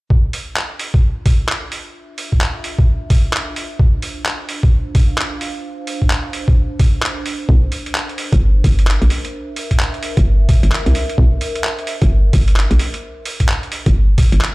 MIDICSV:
0, 0, Header, 1, 4, 480
1, 0, Start_track
1, 0, Key_signature, -1, "minor"
1, 0, Tempo, 461538
1, 107, Time_signature, 4, 2, 24, 8
1, 15128, End_track
2, 0, Start_track
2, 0, Title_t, "Ambient pad"
2, 0, Program_c, 0, 92
2, 108, Note_on_c, 0, 62, 84
2, 323, Note_on_c, 0, 65, 84
2, 1221, Note_on_c, 0, 72, 89
2, 1643, Note_on_c, 0, 76, 74
2, 4851, Note_on_c, 0, 77, 72
2, 4994, Note_off_c, 0, 76, 0
2, 7547, Note_off_c, 0, 77, 0
2, 7548, Note_off_c, 0, 65, 0
2, 7984, Note_on_c, 0, 70, 70
2, 9401, Note_on_c, 0, 76, 72
2, 15128, Note_off_c, 0, 62, 0
2, 15128, Note_off_c, 0, 70, 0
2, 15128, Note_off_c, 0, 72, 0
2, 15128, Note_off_c, 0, 76, 0
2, 15128, End_track
3, 0, Start_track
3, 0, Title_t, "FM bass"
3, 0, Program_c, 1, 39
3, 7787, Note_on_c, 1, 36, 92
3, 7911, Note_off_c, 1, 36, 0
3, 8658, Note_on_c, 1, 31, 92
3, 8962, Note_off_c, 1, 31, 0
3, 8988, Note_on_c, 1, 31, 82
3, 9335, Note_off_c, 1, 31, 0
3, 9377, Note_on_c, 1, 34, 85
3, 9451, Note_off_c, 1, 34, 0
3, 10578, Note_on_c, 1, 31, 96
3, 10882, Note_off_c, 1, 31, 0
3, 11057, Note_on_c, 1, 31, 84
3, 11131, Note_off_c, 1, 31, 0
3, 11297, Note_on_c, 1, 36, 87
3, 11371, Note_off_c, 1, 36, 0
3, 11628, Note_on_c, 1, 36, 97
3, 11751, Note_off_c, 1, 36, 0
3, 12498, Note_on_c, 1, 31, 97
3, 12802, Note_off_c, 1, 31, 0
3, 12827, Note_on_c, 1, 31, 81
3, 13175, Note_off_c, 1, 31, 0
3, 13216, Note_on_c, 1, 34, 88
3, 13290, Note_off_c, 1, 34, 0
3, 14417, Note_on_c, 1, 31, 96
3, 14722, Note_off_c, 1, 31, 0
3, 14896, Note_on_c, 1, 31, 84
3, 14971, Note_off_c, 1, 31, 0
3, 15128, End_track
4, 0, Start_track
4, 0, Title_t, "Drums"
4, 107, Note_on_c, 9, 36, 105
4, 211, Note_off_c, 9, 36, 0
4, 346, Note_on_c, 9, 46, 100
4, 450, Note_off_c, 9, 46, 0
4, 586, Note_on_c, 9, 39, 109
4, 690, Note_off_c, 9, 39, 0
4, 826, Note_on_c, 9, 46, 97
4, 930, Note_off_c, 9, 46, 0
4, 978, Note_on_c, 9, 36, 95
4, 1082, Note_off_c, 9, 36, 0
4, 1306, Note_on_c, 9, 46, 99
4, 1307, Note_on_c, 9, 36, 96
4, 1410, Note_off_c, 9, 46, 0
4, 1411, Note_off_c, 9, 36, 0
4, 1546, Note_on_c, 9, 39, 106
4, 1650, Note_off_c, 9, 39, 0
4, 1786, Note_on_c, 9, 46, 97
4, 1890, Note_off_c, 9, 46, 0
4, 2266, Note_on_c, 9, 46, 94
4, 2370, Note_off_c, 9, 46, 0
4, 2417, Note_on_c, 9, 36, 57
4, 2505, Note_on_c, 9, 39, 112
4, 2521, Note_off_c, 9, 36, 0
4, 2609, Note_off_c, 9, 39, 0
4, 2746, Note_on_c, 9, 46, 94
4, 2850, Note_off_c, 9, 46, 0
4, 2897, Note_on_c, 9, 36, 99
4, 3001, Note_off_c, 9, 36, 0
4, 3226, Note_on_c, 9, 36, 99
4, 3226, Note_on_c, 9, 46, 99
4, 3330, Note_off_c, 9, 36, 0
4, 3330, Note_off_c, 9, 46, 0
4, 3466, Note_on_c, 9, 39, 113
4, 3570, Note_off_c, 9, 39, 0
4, 3706, Note_on_c, 9, 46, 97
4, 3810, Note_off_c, 9, 46, 0
4, 3946, Note_on_c, 9, 36, 111
4, 4050, Note_off_c, 9, 36, 0
4, 4185, Note_on_c, 9, 46, 93
4, 4289, Note_off_c, 9, 46, 0
4, 4426, Note_on_c, 9, 39, 114
4, 4530, Note_off_c, 9, 39, 0
4, 4666, Note_on_c, 9, 46, 93
4, 4770, Note_off_c, 9, 46, 0
4, 4818, Note_on_c, 9, 36, 103
4, 4922, Note_off_c, 9, 36, 0
4, 5146, Note_on_c, 9, 46, 93
4, 5147, Note_on_c, 9, 36, 99
4, 5250, Note_off_c, 9, 46, 0
4, 5251, Note_off_c, 9, 36, 0
4, 5387, Note_on_c, 9, 39, 112
4, 5491, Note_off_c, 9, 39, 0
4, 5626, Note_on_c, 9, 46, 92
4, 5730, Note_off_c, 9, 46, 0
4, 6107, Note_on_c, 9, 46, 91
4, 6211, Note_off_c, 9, 46, 0
4, 6258, Note_on_c, 9, 36, 57
4, 6346, Note_on_c, 9, 39, 114
4, 6362, Note_off_c, 9, 36, 0
4, 6450, Note_off_c, 9, 39, 0
4, 6585, Note_on_c, 9, 46, 91
4, 6689, Note_off_c, 9, 46, 0
4, 6738, Note_on_c, 9, 36, 100
4, 6842, Note_off_c, 9, 36, 0
4, 7067, Note_on_c, 9, 36, 99
4, 7067, Note_on_c, 9, 46, 90
4, 7171, Note_off_c, 9, 36, 0
4, 7171, Note_off_c, 9, 46, 0
4, 7306, Note_on_c, 9, 39, 112
4, 7410, Note_off_c, 9, 39, 0
4, 7547, Note_on_c, 9, 46, 93
4, 7651, Note_off_c, 9, 46, 0
4, 7787, Note_on_c, 9, 36, 107
4, 7891, Note_off_c, 9, 36, 0
4, 8027, Note_on_c, 9, 46, 91
4, 8131, Note_off_c, 9, 46, 0
4, 8177, Note_on_c, 9, 42, 61
4, 8267, Note_on_c, 9, 39, 110
4, 8281, Note_off_c, 9, 42, 0
4, 8371, Note_off_c, 9, 39, 0
4, 8418, Note_on_c, 9, 42, 34
4, 8507, Note_on_c, 9, 46, 94
4, 8522, Note_off_c, 9, 42, 0
4, 8611, Note_off_c, 9, 46, 0
4, 8658, Note_on_c, 9, 36, 95
4, 8659, Note_on_c, 9, 42, 59
4, 8762, Note_off_c, 9, 36, 0
4, 8763, Note_off_c, 9, 42, 0
4, 8988, Note_on_c, 9, 36, 98
4, 8988, Note_on_c, 9, 46, 95
4, 9092, Note_off_c, 9, 36, 0
4, 9092, Note_off_c, 9, 46, 0
4, 9139, Note_on_c, 9, 42, 61
4, 9228, Note_on_c, 9, 39, 109
4, 9243, Note_off_c, 9, 42, 0
4, 9332, Note_off_c, 9, 39, 0
4, 9378, Note_on_c, 9, 42, 50
4, 9467, Note_on_c, 9, 46, 93
4, 9482, Note_off_c, 9, 42, 0
4, 9571, Note_off_c, 9, 46, 0
4, 9617, Note_on_c, 9, 42, 60
4, 9721, Note_off_c, 9, 42, 0
4, 9947, Note_on_c, 9, 46, 96
4, 10051, Note_off_c, 9, 46, 0
4, 10098, Note_on_c, 9, 42, 62
4, 10099, Note_on_c, 9, 36, 54
4, 10187, Note_on_c, 9, 39, 109
4, 10202, Note_off_c, 9, 42, 0
4, 10203, Note_off_c, 9, 36, 0
4, 10291, Note_off_c, 9, 39, 0
4, 10338, Note_on_c, 9, 42, 35
4, 10427, Note_on_c, 9, 46, 97
4, 10442, Note_off_c, 9, 42, 0
4, 10531, Note_off_c, 9, 46, 0
4, 10578, Note_on_c, 9, 42, 62
4, 10579, Note_on_c, 9, 36, 96
4, 10682, Note_off_c, 9, 42, 0
4, 10683, Note_off_c, 9, 36, 0
4, 10907, Note_on_c, 9, 46, 98
4, 10908, Note_on_c, 9, 36, 96
4, 11011, Note_off_c, 9, 46, 0
4, 11012, Note_off_c, 9, 36, 0
4, 11058, Note_on_c, 9, 42, 64
4, 11147, Note_on_c, 9, 39, 106
4, 11162, Note_off_c, 9, 42, 0
4, 11251, Note_off_c, 9, 39, 0
4, 11298, Note_on_c, 9, 42, 52
4, 11388, Note_on_c, 9, 46, 97
4, 11402, Note_off_c, 9, 42, 0
4, 11492, Note_off_c, 9, 46, 0
4, 11538, Note_on_c, 9, 42, 63
4, 11628, Note_on_c, 9, 36, 106
4, 11642, Note_off_c, 9, 42, 0
4, 11732, Note_off_c, 9, 36, 0
4, 11867, Note_on_c, 9, 46, 100
4, 11971, Note_off_c, 9, 46, 0
4, 12017, Note_on_c, 9, 42, 65
4, 12106, Note_on_c, 9, 39, 107
4, 12121, Note_off_c, 9, 42, 0
4, 12210, Note_off_c, 9, 39, 0
4, 12258, Note_on_c, 9, 42, 36
4, 12345, Note_on_c, 9, 46, 102
4, 12362, Note_off_c, 9, 42, 0
4, 12449, Note_off_c, 9, 46, 0
4, 12496, Note_on_c, 9, 42, 65
4, 12498, Note_on_c, 9, 36, 94
4, 12600, Note_off_c, 9, 42, 0
4, 12602, Note_off_c, 9, 36, 0
4, 12825, Note_on_c, 9, 46, 105
4, 12827, Note_on_c, 9, 36, 93
4, 12929, Note_off_c, 9, 46, 0
4, 12931, Note_off_c, 9, 36, 0
4, 12976, Note_on_c, 9, 42, 68
4, 13065, Note_on_c, 9, 39, 104
4, 13080, Note_off_c, 9, 42, 0
4, 13169, Note_off_c, 9, 39, 0
4, 13216, Note_on_c, 9, 42, 54
4, 13306, Note_on_c, 9, 46, 105
4, 13320, Note_off_c, 9, 42, 0
4, 13410, Note_off_c, 9, 46, 0
4, 13457, Note_on_c, 9, 42, 65
4, 13561, Note_off_c, 9, 42, 0
4, 13785, Note_on_c, 9, 46, 104
4, 13889, Note_off_c, 9, 46, 0
4, 13937, Note_on_c, 9, 36, 56
4, 13937, Note_on_c, 9, 42, 65
4, 14026, Note_on_c, 9, 39, 106
4, 14041, Note_off_c, 9, 36, 0
4, 14041, Note_off_c, 9, 42, 0
4, 14130, Note_off_c, 9, 39, 0
4, 14177, Note_on_c, 9, 42, 36
4, 14266, Note_on_c, 9, 46, 105
4, 14281, Note_off_c, 9, 42, 0
4, 14370, Note_off_c, 9, 46, 0
4, 14417, Note_on_c, 9, 36, 97
4, 14417, Note_on_c, 9, 42, 63
4, 14521, Note_off_c, 9, 36, 0
4, 14521, Note_off_c, 9, 42, 0
4, 14746, Note_on_c, 9, 46, 108
4, 14747, Note_on_c, 9, 36, 95
4, 14850, Note_off_c, 9, 46, 0
4, 14851, Note_off_c, 9, 36, 0
4, 14897, Note_on_c, 9, 42, 66
4, 14986, Note_on_c, 9, 39, 112
4, 15001, Note_off_c, 9, 42, 0
4, 15090, Note_off_c, 9, 39, 0
4, 15128, End_track
0, 0, End_of_file